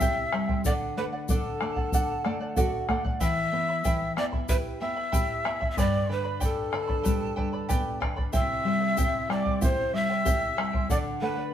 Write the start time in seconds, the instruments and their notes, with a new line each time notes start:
Already playing: nylon-string guitar C3, pan flute E5, quena E6
0.00 charango E4 G4 C5 E5 G5, nylon-string guitar G4, bombo low, shaker
0.33 nylon-string guitar G3, charango E4 C5 E5 G5, bombo rim
0.48 charango E4 C5 G5, bombo low
0.65 nylon-string guitar D3, charango A4 D5 F#5, pan flute D5, quena D6, bombo low, shaker
0.97 nylon-string guitar A3, charango A4 D5 F#5, pan flute B4, quena B5
1.12 charango D5 F#5
1.28 nylon-string guitar D4, charango A4 D5 F#5, pan flute A4, quena A5, bombo low, shaker
1.61 nylon-string guitar A3, charango A4 D5 F#5, bombo rim
1.76 charango D5 F#5, bombo low
1.92 nylon-string guitar D4, charango A4 D5 F#5, bombo low, shaker
2.24 nylon-string guitar A3 D5, charango A4 D5 F#5, bombo rim
2.40 charango D5 F#5
2.56 nylon-string guitar F#4 E5, charango A4 D5 F#5, bombo low, shaker
2.89 nylon-string guitar A3 F#5, charango A4 D5 F#5, bombo rim, bombo low
3.04 charango D5 F#5, bombo low
3.20 nylon-string guitar E3, charango E4 B4 E5 G5 B5, pan flute E5, quena E6, bombo low, shaker
3.52 nylon-string guitar B3, charango E4 E5 G5 B5
3.69 charango E4 E5 B5
3.84 nylon-string guitar E3, charango E4 B4 E5 G5 B5, bombo low, shaker
4.16 nylon-string guitar B3, charango E4 E5 G5 B5, pan flute D5, quena D6, bombo rim
4.32 charango E4 E5 B5, bombo low
4.49 charango E4 B4 E5 G5 B5, nylon-string guitar G4, pan flute B4, quena B5, bombo low, shaker
4.81 nylon-string guitar B3, charango E4 E5 G5 B5, pan flute E5, quena E6
4.96 charango E4 E5 B5
5.12 charango E4 B4 E5 G5 B5, nylon-string guitar G4, bombo low, shaker
5.44 nylon-string guitar B3, charango E4 E5 G5 B5, bombo rim
5.61 charango E4 E5 B5, bombo low
5.70 pan flute E5, quena E6
5.77 nylon-string guitar G2, charango G4 B4 D5 G5 B5, pan flute D5, quena D6, bombo low, shaker
6.09 nylon-string guitar D3, charango B4 D5 G5 B5, pan flute B4, quena B5
6.24 charango B4 D5 B5
6.40 nylon-string guitar D4, charango G4 B4 D5 G5 B5, pan flute A4, quena A5, bombo low, shaker
6.72 nylon-string guitar D3, charango B4 D5 G5 B5, bombo rim
6.88 charango B4 D5 B5, bombo low
7.03 nylon-string guitar G3, charango G4 B4 D5 G5 B5, bombo low, shaker
7.36 nylon-string guitar D3, charango B4 D5 G5 B5, bombo low
7.53 charango B4 D5 B5
7.69 nylon-string guitar B3, charango G4 B4 D5 G5 B5, bombo low, shaker
8.00 nylon-string guitar D3, charango B4 D5 G5 B5, bombo rim, bombo low
8.16 charango B4 D5 B5, bombo low
8.32 nylon-string guitar C3, charango E4 G4 C5 E5 G5, pan flute E5, quena E6, bombo low, shaker
8.65 nylon-string guitar G3, charango E4 C5 E5 G5
8.81 charango E4 C5 G5
8.97 nylon-string guitar E4, charango E4 G4 C5 E5 G5, bombo low, shaker
9.29 nylon-string guitar G3, charango E4 C5 E5 G5, pan flute D5, quena D6, bombo rim
9.45 charango E4 C5 G5, bombo low
9.61 nylon-string guitar E4, charango E4 G4 C5 E5 G5, pan flute C5, quena C6, bombo low, shaker
9.93 nylon-string guitar G3, charango E4 C5 E5 G5, pan flute E5, quena E6
10.10 charango E4 C5 G5
10.25 charango E4 G4 C5 E5 G5, nylon-string guitar G4, bombo low, shaker
10.57 nylon-string guitar G3, charango E4 C5 E5 G5, bombo rim
10.73 charango E4 C5 G5, bombo low
10.90 nylon-string guitar D3, charango A4 D5 F#5, pan flute D5, quena D6, bombo low, shaker
11.21 nylon-string guitar A3, charango A4 D5 F#5, pan flute B4, quena B5
11.36 charango D5 F#5